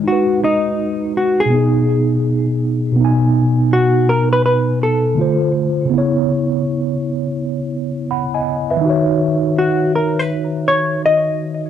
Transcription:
0.00 G#3 D#4
0.08 F#4
0.12 B4
0.44 D#4
1.17 F#4
1.40 G#4
1.46 B2
1.50 B3
1.54 D#4
1.59 G#4
2.92 B2
2.96 B3
3.00 D#4
3.05 G#5
3.73 F#4
4.09 A#4
4.33 B4
4.46 B4
4.83 A4
5.15 D3 A3
5.19 F4 C5
5.85 C#3
5.90 B3
5.94 E4
5.98 C#5
8.11 F#5 B5
8.34 D#5 G#5
8.70 B4 E5
8.77 D#3
8.81 D#4
8.85 F#4
8.90 C#5
9.58 F#4
9.95 A#4
10.19 B4
10.68 C#5
11.06 D#5

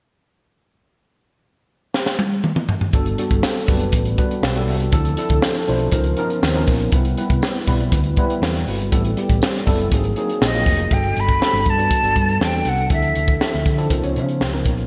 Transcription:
1.94 snare
2.06 snare
2.19 high tom
2.44 mid tom
2.56 mid tom
2.69 floor tom
2.81 floor tom
2.93 G1 G3 B3 D4 F#4 A4, kick, closed hi-hat
3.06 closed hi-hat
3.18 G3 B3 D4 F#4 A4, closed hi-hat
3.31 G1, kick, closed hi-hat
3.43 snare, tambourine
3.56 closed hi-hat
3.67 F#1 G3 B3 D4 F#4 B4, kick, open hi-hat
3.80 closed hi-hat
3.92 A1, kick, closed hi-hat
4.05 closed hi-hat
4.18 G3 B3 D4 F#4 B4, kick, closed hi-hat
4.31 closed hi-hat
4.43 B1, snare, tambourine
4.55 G3 B3 D4 F#4 A4, closed hi-hat
4.68 C2, open hi-hat
4.80 closed hi-hat
4.92 D2 F3 C4 D4 E4 A4, kick, closed hi-hat
5.05 closed hi-hat
5.17 F3 C4 D4 E4 A4, closed hi-hat
5.29 D2, kick, closed hi-hat
5.42 snare, tambourine
5.55 snare, closed hi-hat
5.66 B1 F3 C4 D4 E4 C5, open hi-hat
5.79 closed hi-hat
5.92 C#2 F3 B3 C#4 D#4 A#4, kick, closed hi-hat
6.04 closed hi-hat
6.17 F3 B3 C#4 D#4 A#4, closed hi-hat
6.30 closed hi-hat
6.43 D#2, snare, tambourine
6.54 F3 B3 C#4 D#4 A#4, closed hi-hat
6.67 A#1, kick, open hi-hat
6.80 closed hi-hat
6.92 C2 G3 B3 C4 E4 B4, kick, closed hi-hat
7.05 closed hi-hat
7.17 G3 B3 C4 E4 B4, closed hi-hat
7.30 C2, kick, closed hi-hat
7.42 snare, tambourine
7.55 snare, closed hi-hat
7.67 B1 G3 B3 C4 E4 B4, kick, open hi-hat
7.80 closed hi-hat
7.92 D2, kick, closed hi-hat
8.04 closed hi-hat
8.17 G3 B3 C4 E4 B4, kick, closed hi-hat
8.30 closed hi-hat
8.42 E2 A4, snare, tambourine
8.55 snare, closed hi-hat
8.67 G1 F#4 B4, open hi-hat
8.80 closed hi-hat
8.92 A1 G3 B3 C4 E4 A4, kick, closed hi-hat
9.05 closed hi-hat
9.17 G3 B3 C4 E4 G4, closed hi-hat
9.30 A1, kick, closed hi-hat
9.42 snare, tambourine
9.55 snare, closed hi-hat
9.66 F#1 G3 B3 C4 E4 A4, kick, open hi-hat
9.80 closed hi-hat
9.91 G#1 F#3 A#3 C4 D#4 G#4, kick, closed hi-hat
10.04 closed hi-hat
10.16 F#3 A#3 C4 D#4 G#4, closed hi-hat
10.30 closed hi-hat
10.41 A#1 D#5, snare, tambourine
10.53 F#3 A#3 C4 D#4 F4, snare, closed hi-hat
10.66 F1, kick, open hi-hat
10.79 closed hi-hat
10.91 G1 G3 B3 D4 F#4 A4 G5, kick, closed hi-hat
11.04 closed hi-hat
11.17 G1 B5, closed hi-hat
11.29 kick, closed hi-hat
11.40 G3 B3 D4 F#4 A4, snare
11.53 G1, closed hi-hat
11.65 G2, kick, closed hi-hat
11.70 A5
11.78 G3 B3 D4 F#4 B4, closed hi-hat
11.91 kick, closed hi-hat
12.03 G1 G3 B3 D4 F#4 A4, closed hi-hat
12.16 G2, kick, closed hi-hat
12.29 closed hi-hat
12.40 E2 G5, snare
12.53 G3 B3 D4 F#4 A4, closed hi-hat
12.65 C2 F#5, closed hi-hat
12.77 closed hi-hat
12.90 D2 F3 C4 D4 E4 A4 E5, kick, closed hi-hat
13.02 closed hi-hat
13.15 D2, closed hi-hat
13.28 kick, closed hi-hat
13.40 F3 C4 D4 E4 A4, snare
13.53 D2, snare, closed hi-hat
13.65 D3, kick, closed hi-hat
13.77 F3 C4 D4 E4 A4, closed hi-hat
13.89 C#2 F3 B3 C#4 D#4 A#4, kick, closed hi-hat
14.02 C#2 F3 B3 C#4 D#4 C#5, closed hi-hat
14.16 C#3, closed hi-hat
14.29 closed hi-hat
14.40 C#2, snare
14.52 F3 B3 C#4 D#4 A#4, snare, closed hi-hat
14.65 A#1, kick, closed hi-hat
14.78 closed hi-hat

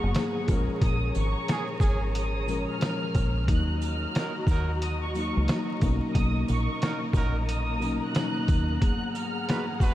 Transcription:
Already playing: G#2 F#3 A#3 B3 G#4 F#5 A#5 C#6
0.04 F#1
0.13 G#2 F#3 A#3 B3, snare, closed hi-hat, sleigh bells
0.17 G#4
0.47 A#1 A#2 F3 G#3 C#4 C#5 A#5, kick, closed hi-hat, shaker, sleigh bells
0.51 A#4
0.81 A#1 D#6, kick, closed hi-hat, sleigh bells
1.15 G#1 C#6, shaker, sleigh bells
1.48 C#4 G#4, snare, closed hi-hat, sleigh bells
1.80 G#1 C#4 G#4, kick, shaker, sleigh bells
2.15 D#6, closed hi-hat, sleigh bells
2.46 A#2 F3 G#3 C#4, shaker, sleigh bells
2.50 A#4
2.69 F6
2.79 A#2 F3 G#3 C#4, snare, closed hi-hat, sleigh bells
2.83 A#4
3.15 A#1, kick, closed hi-hat, shaker, sleigh bells
3.45 D#2 F#3 A#3 F#4 D#5 A#5 F#6, kick, closed hi-hat, sleigh bells
3.50 D#4
3.82 F6, shaker, sleigh bells
4.15 F#3 D#4 A#4, snare, closed hi-hat, sleigh bells
4.47 D#2 F#3 D#4 A#4, kick, shaker, sleigh bells
4.82 D#6, closed hi-hat, sleigh bells
5.03 C#6
5.14 F#3 A#3 C#6, shaker, sleigh bells
5.18 D#4
5.37 C#2
5.46 F#3 A#3, snare, closed hi-hat, sleigh bells
5.50 D#4
5.79 B1 B2 F#3 A#3 C#4 A#5, kick, closed hi-hat, shaker, sleigh bells
5.84 D#4
6.14 B1 D#6, kick, closed hi-hat, sleigh bells
6.48 A#1 C#6, shaker, sleigh bells
6.82 F#3 D#4 A#4, snare, closed hi-hat, sleigh bells
7.13 A#1 F#3 D#4 A#4, kick, shaker, sleigh bells
7.49 D#6, closed hi-hat, sleigh bells
7.80 B2 F#3 A#3 C#4, shaker, sleigh bells
7.84 D#4
8.03 F#6
8.12 B2 F#3 A#3 C#4, snare, closed hi-hat, sleigh bells
8.17 D#4
8.48 D#2, kick, closed hi-hat, shaker, sleigh bells
8.79 G#2 F#3 A#3 B3 G#4 F#5 F#6, kick, closed hi-hat, sleigh bells
8.84 G#4
9.15 F6, shaker, sleigh bells
9.48 G#3 F#4 B4, snare, closed hi-hat, sleigh bells
9.80 G#3 F#4 B4, kick, shaker, sleigh bells

